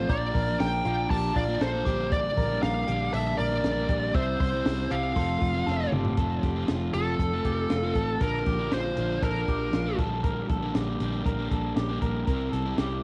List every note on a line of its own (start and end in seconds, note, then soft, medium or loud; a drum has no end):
0.00 0.11 C5 loud
0.00 0.14 C6 medium
0.09 0.30 A#1 loud
0.09 0.47 A#2 medium
0.09 0.47 F3 medium
0.09 0.47 A#3 medium
0.09 0.46 D4 medium
0.09 0.34 D5 medium
0.09 0.56 D5 loud
0.09 0.59 A#5 medium
0.09 kick loud
0.09 hi-hat pedal medium
0.09 open hi-hat loud
0.34 0.55 A#1 medium
0.34 0.82 A#4 medium
0.34 kick medium
0.34 hi-hat pedal medium
0.34 open hi-hat medium
0.47 0.85 F3 medium
0.47 0.86 A#3 medium
0.47 0.85 D4 medium
0.60 0.81 A#1 loud
0.60 1.07 G5 loud
0.60 1.90 A#5 medium
0.60 snare loud
0.60 hi-hat pedal medium
0.60 open hi-hat loud
0.85 1.06 A#1 loud
0.85 1.09 A#2 medium
0.85 1.10 F3 medium
0.85 1.11 A#3 medium
0.85 1.12 D4 medium
0.85 1.10 F4 medium
0.85 hi-hat pedal medium
0.85 open hi-hat medium
1.10 1.31 A#1 loud
1.10 1.48 A#2 medium
1.10 1.48 F3 medium
1.10 1.48 A#3 medium
1.10 1.47 D4 medium
1.10 1.36 G4 medium
1.10 1.37 A5 medium
1.10 kick medium
1.10 hi-hat pedal medium
1.10 open hi-hat loud
1.36 1.57 A#1 loud
1.36 1.61 F4 medium
1.36 1.59 D5 loud
1.36 kick medium
1.36 hi-hat pedal medium
1.36 open hi-hat medium
1.48 1.75 A#2 medium
1.48 1.74 F3 medium
1.48 1.74 A#3 medium
1.48 1.73 D4 medium
1.60 1.81 A#1 medium
1.60 1.86 A4 medium
1.60 2.14 C5 medium
1.60 snare loud
1.60 hi-hat pedal medium
1.60 open hi-hat medium
1.74 1.87 F3 soft
1.74 1.87 A#3 medium
1.74 1.86 D4 medium
1.85 2.28 A#1 loud
1.85 2.50 A#2 medium
1.85 2.50 D3 medium
1.85 2.52 G3 medium
1.85 2.50 A#3 medium
1.85 2.49 D4 medium
1.85 2.12 G4 medium
1.85 4.21 D6 loud
1.85 kick medium
1.85 hi-hat pedal medium
1.85 open hi-hat medium
2.12 2.59 D5 loud
2.12 2.37 D5 loud
2.12 kick loud
2.12 hi-hat pedal medium
2.12 open hi-hat loud
2.37 2.58 A#1 loud
2.37 2.85 A#4 medium
2.37 kick medium
2.37 hi-hat pedal medium
2.37 open hi-hat medium
2.50 2.87 G3 medium
2.50 2.89 A#3 soft
2.50 2.88 D4 medium
2.63 2.83 A#1 loud
2.63 3.14 F5 loud
2.63 snare loud
2.63 hi-hat pedal medium
2.63 open hi-hat loud
2.88 3.09 A#1 loud
2.88 3.12 D3 medium
2.88 3.12 G3 medium
2.88 3.13 A#3 medium
2.88 3.14 D4 medium
2.88 3.13 G4 medium
2.88 hi-hat pedal medium
2.88 open hi-hat medium
3.13 3.34 A#1 loud
3.13 3.51 D3 medium
3.13 3.51 G3 medium
3.13 3.50 A#3 medium
3.13 3.50 D4 medium
3.13 3.38 A4 medium
3.13 3.37 E5 medium
3.13 hi-hat pedal medium
3.13 open hi-hat loud
3.38 3.59 A#1 loud
3.38 3.86 A#4 medium
3.38 4.11 D5 loud
3.38 hi-hat pedal medium
3.38 open hi-hat medium
3.51 3.77 A#2 medium
3.51 3.77 D3 medium
3.51 3.77 G3 medium
3.51 3.76 A#3 medium
3.51 3.75 D4 medium
3.64 3.85 A#1 medium
3.64 snare medium
3.64 hi-hat pedal medium
3.64 open hi-hat medium
3.76 4.14 G3 soft
3.76 4.15 A#3 medium
3.76 4.14 D4 medium
3.89 4.10 A#1 medium
3.89 4.15 G4 medium
3.89 kick medium
3.89 hi-hat pedal medium
3.89 open hi-hat medium
4.14 4.35 C2 loud
4.14 4.52 C3 medium
4.14 4.53 G3 medium
4.14 4.53 C4 medium
4.14 4.51 E4 medium
4.14 4.40 C5 loud
4.14 4.40 E5 medium
4.14 5.19 E6 loud
4.14 kick loud
4.14 hi-hat pedal medium
4.14 open hi-hat medium
4.40 4.61 C2 medium
4.40 4.88 C5 medium
4.40 4.93 C5 loud
4.40 kick medium
4.40 snare soft
4.40 hi-hat pedal medium
4.40 open hi-hat medium
4.52 4.90 G3 soft
4.52 4.91 C4 medium
4.52 4.90 E4 medium
4.66 4.86 C2 loud
4.66 snare loud
4.66 hi-hat pedal medium
4.66 open hi-hat loud
4.91 5.12 C2 medium
4.91 5.15 C3 medium
4.91 5.17 G3 medium
4.91 5.16 C4 medium
4.91 5.17 E4 medium
4.91 5.16 G4 medium
4.91 5.89 F5 medium
4.91 hi-hat pedal medium
4.91 open hi-hat medium
5.16 5.37 F1 loud
5.16 5.54 F3 medium
5.16 5.54 A3 medium
5.16 5.53 C4 medium
5.16 5.53 F4 medium
5.16 5.41 A4 medium
5.16 5.68 C6 loud
5.16 kick medium
5.16 hi-hat pedal medium
5.16 open hi-hat medium
5.41 5.63 F1 loud
5.41 5.67 F4 medium
5.41 kick medium
5.41 hi-hat pedal medium
5.41 open hi-hat medium
5.54 5.80 F3 medium
5.54 5.80 A3 medium
5.54 5.80 C4 medium
5.54 5.78 F4 medium
5.66 5.88 F1 medium
5.66 5.92 A4 medium
5.66 6.14 A5 medium
5.66 snare medium
5.79 6.17 A3 medium
5.79 6.18 C4 medium
5.79 6.17 F4 medium
5.92 6.13 G1 medium
5.92 6.18 G4 medium
5.92 mid tom medium
6.05 floor tom medium
6.17 6.39 F1 loud
6.17 6.56 F3 medium
6.17 6.56 A3 medium
6.17 6.56 C4 medium
6.17 6.55 F4 medium
6.17 6.43 A4 medium
6.17 kick medium
6.17 closed hi-hat medium
6.43 6.64 F1 medium
6.43 6.69 G4 medium
6.43 kick medium
6.43 snare soft
6.43 closed hi-hat medium
6.56 6.92 F3 medium
6.56 6.94 A3 medium
6.56 6.94 C4 medium
6.56 6.94 F4 medium
6.68 6.90 F1 medium
6.68 7.16 F4 medium
6.68 snare loud
6.68 closed hi-hat loud
6.94 7.15 F1 loud
6.94 7.32 F3 medium
6.94 7.33 A3 medium
6.94 7.32 C4 medium
6.94 7.31 F4 medium
6.94 8.22 A4 medium
6.94 closed hi-hat medium
7.19 7.40 F1 loud
7.19 7.45 A4 medium
7.19 kick medium
7.19 closed hi-hat medium
7.32 7.84 A3 soft
7.32 7.83 C4 soft
7.32 7.82 F4 medium
7.45 7.66 F1 loud
7.45 7.70 G4 medium
7.45 kick medium
7.45 closed hi-hat medium
7.70 7.92 F1 medium
7.70 7.96 F4 medium
7.70 snare medium
7.70 closed hi-hat medium
7.83 8.21 A3 medium
7.83 8.22 C4 medium
7.83 8.21 F4 medium
7.95 8.16 A1 medium
7.95 8.20 A4 medium
7.95 kick medium
7.95 closed hi-hat medium
8.20 8.42 A#1 loud
8.20 8.59 D3 medium
8.20 8.58 F3 medium
8.20 8.58 A#3 medium
8.20 8.57 D4 medium
8.20 8.46 A4 medium
8.20 8.69 A#4 loud
8.20 kick loud
8.20 closed hi-hat medium
8.46 8.67 A#1 loud
8.46 8.72 G4 medium
8.46 kick medium
8.46 snare soft
8.46 closed hi-hat medium
8.59 8.98 A#2 medium
8.59 8.95 D3 medium
8.59 8.96 F3 medium
8.59 8.97 A#3 medium
8.59 8.97 D4 medium
8.72 8.93 A#1 medium
8.72 9.19 F4 medium
8.72 9.23 C5 medium
8.72 snare loud
8.72 closed hi-hat medium
8.97 9.18 A#1 medium
8.97 9.35 D3 medium
8.97 9.36 F3 medium
8.97 9.35 A#3 medium
8.97 9.34 D4 medium
8.97 closed hi-hat medium
9.22 9.43 A#1 loud
9.22 9.48 A4 medium
9.22 9.95 A#4 medium
9.22 kick medium
9.22 closed hi-hat medium
9.35 9.87 F3 soft
9.35 9.87 A#3 soft
9.35 9.85 D4 medium
9.48 9.69 A#1 loud
9.48 9.74 G4 medium
9.48 kick medium
9.48 closed hi-hat medium
9.73 9.94 A#1 loud
9.73 9.99 F4 medium
9.73 snare medium
9.73 closed hi-hat medium
9.85 9.99 F3 medium
9.85 9.99 A#3 medium
9.85 9.98 D4 medium
9.98 10.40 A#1 medium
9.98 10.62 A#2 medium
9.98 10.62 D3 medium
9.98 10.63 G3 loud
9.98 10.61 A#3 medium
9.98 10.61 D4 medium
9.98 10.23 A4 medium
9.98 kick medium
9.98 closed hi-hat medium
10.24 10.49 A#4 medium
10.24 kick loud
10.24 closed hi-hat medium
10.50 10.70 A#1 medium
10.50 10.75 A4 medium
10.50 kick medium
10.50 closed hi-hat medium
10.62 11.01 A#2 medium
10.62 10.99 D3 medium
10.62 11.00 G3 medium
10.62 11.00 A#3 medium
10.62 11.00 D4 medium
10.75 10.96 A#1 loud
10.75 11.23 G4 medium
10.75 snare loud
10.75 closed hi-hat medium
11.00 11.21 A#1 loud
11.00 11.38 D3 medium
11.00 11.39 G3 medium
11.00 11.38 A#3 medium
11.00 11.37 D4 medium
11.00 closed hi-hat medium
11.25 11.46 A#1 loud
11.25 11.51 A#4 medium
11.25 kick medium
11.25 closed hi-hat medium
11.38 11.91 G3 soft
11.38 11.89 A#3 medium
11.38 11.88 D4 medium
11.51 11.72 A#1 loud
11.51 11.76 A4 medium
11.51 kick medium
11.51 closed hi-hat medium
11.76 11.97 A#1 medium
11.76 12.01 G4 medium
11.76 snare medium
11.76 closed hi-hat medium
11.89 12.27 G3 medium
11.89 12.28 A#3 medium
11.89 12.27 D4 medium
12.02 12.23 A#1 medium
12.02 12.26 A#4 medium
12.02 kick medium
12.02 closed hi-hat medium
12.27 12.48 C2 medium
12.27 12.65 C3 medium
12.27 12.66 G3 medium
12.27 12.65 C4 medium
12.27 12.64 E4 medium
12.27 12.52 A#4 medium
12.27 kick loud
12.27 closed hi-hat medium
12.52 12.74 C2 medium
12.52 12.78 A4 medium
12.52 snare soft
12.52 closed hi-hat medium
12.65 13.02 C3 medium
12.65 13.03 G3 medium
12.65 13.03 C4 medium
12.65 13.03 E4 medium
12.78 12.99 C2 loud
12.78 13.03 G4 medium
12.78 snare loud
12.78 closed hi-hat medium